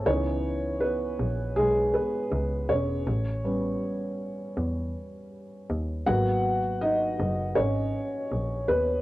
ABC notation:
X:1
M:4/4
L:1/8
Q:"Swing 16ths" 1/4=80
K:G#m
V:1 name="Felt piano"
[Cc]2 [B,B]2 [G,G] [B,B]2 [Cc]- | [Cc] z6 z | [Ff]2 [Dd]2 [Cc]3 [B,B] |]
V:2 name="Felt piano"
[E,B,D]8 | z [=G,B,C]6- [G,B,C] | [F,A,B,] z6 z |]
V:3 name="Double bass" clef=bass
C,,3 A,,, B,,, z C,, E,,, | =A,,,2 z2 E,, z2 D,, | G,,,3 F,,, G,,, z A,,, D,, |]